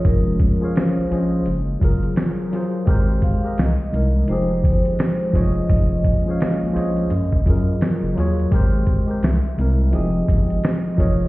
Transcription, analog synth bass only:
X:1
M:4/4
L:1/16
Q:"Swing 16ths" 1/4=85
K:Bbdor
V:1 name="Analog synth bass" clef=bass
F,,,3 z2 B,,, B,,,2 _G,,,2 G,,,2 z4 | A,,,3 z C,, C,, C,,2 F,,,2 G,,,2 z2 F,,,2 | F,,,3 z2 B,,, B,,,2 _G,,2 G,,2 z _G,,, E,,2 | A,,,3 z C,, C,, C,,2 F,,,2 G,,,2 z2 F,,,2 |]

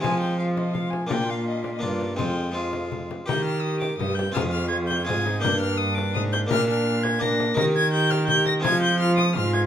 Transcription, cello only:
X:1
M:3/4
L:1/8
Q:1/4=168
K:Fdor
V:1 name="Cello" clef=bass
F,6 | B,,4 G,,2 | F,,4- F,, z | E,4 G,,2 |
F,,4 A,,2 | G,,4 A,,2 | B,,6 | E,6 |
F,4 A,,2 |]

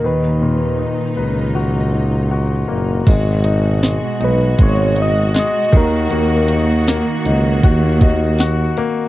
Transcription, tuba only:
X:1
M:4/4
L:1/16
Q:1/4=79
K:Abdor
V:1 name="Tuba" clef=bass
^D,,4 z2 _D,,8 ^F,,,2 | A,,,4- A,,, z C,,2 A,,,4 z2 E,,2 | E,,4- E,, z D,,2 E,,6 z2 |]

